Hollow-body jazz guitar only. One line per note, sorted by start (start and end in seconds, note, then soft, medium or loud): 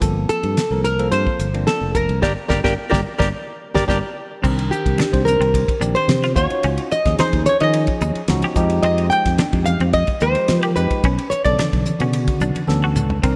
0.30 0.81 A4 medium
0.86 1.11 A#4 medium
1.13 1.64 C5 medium
1.68 1.93 A4 medium
1.96 2.21 A#4 medium
2.23 2.32 G4 medium
2.23 2.32 A#4 medium
2.23 2.32 D5 medium
2.50 2.60 G4 medium
2.50 2.59 A#4 medium
2.50 2.59 D5 medium
2.64 2.73 G4 medium
2.64 2.73 A#4 medium
2.64 2.73 D5 medium
2.90 3.00 G4 medium
2.90 2.99 A#4 medium
2.90 2.99 D5 medium
3.18 3.28 G4 medium
3.18 3.27 A#4 medium
3.18 3.28 D5 medium
3.76 3.84 G4 medium
3.76 3.84 A#4 medium
3.76 3.84 D5 medium
3.89 3.98 G4 medium
3.89 3.98 A#4 medium
3.89 3.98 D5 medium
4.72 5.23 G4 medium
5.28 5.92 A#4 medium
5.97 6.34 C5 medium
6.38 6.88 C#5 medium
6.92 7.17 D#5 medium
7.21 7.45 C5 medium
7.49 7.61 C#5 medium
7.63 8.54 D#5 medium
8.86 9.10 D#5 medium
9.13 9.63 G5 medium
9.66 9.91 F5 medium
9.94 10.19 D#5 medium
10.23 10.73 C5 medium
10.77 11.28 B4 medium
11.31 11.44 C#5 medium
11.45 12.92 D5 medium